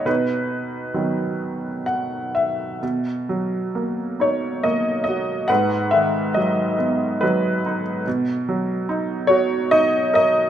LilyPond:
<<
  \new Staff \with { instrumentName = "Upright piano" } { \time 3/4 \key b \major \tempo 4 = 70 << { b'2 fis''8 e''8 | r4. cis''8 dis''8 dis''8 | fis''8 e''8 dis''4 b'8. r16 | r4. cis''8 dis''8 dis''8 | } \\ { dis'2 r4 | r2. | b'4. r4. | r2. | } >> }
  \new Staff \with { instrumentName = "Upright piano" } { \clef bass \time 3/4 \key b \major b,4 <dis fis b>2 | b,8 fis8 ais8 dis'8 ais8 fis'8 | gis,8 dis8 fis8 b8 fis8 dis'8 | b,8 fis8 dis'8 fis'8 dis'8 ais'8 | }
>>